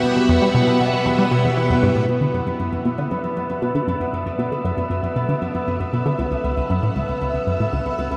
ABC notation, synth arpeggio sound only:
X:1
M:4/4
L:1/16
Q:1/4=117
K:Bm
V:1 name="Synth arpeggio sound" clef=bass
B,, B,, E,, G, B,, B,, B,, B,, E,, G, B,, E,, E, E,, G,, A,, | B,, D, F,, F,, F,, F,, B,, D, F,, F,, F,, F,, B,, D, F,, F,, | F,, F,, B,, D, F,, F,, F,, F,, B,, D, F,, F,, F,, F,, B,, D, | C,, C,, C,, C,, F,, A,, C,, C,, C,, C,, F,, A,, C,, C,, C,, C,, |]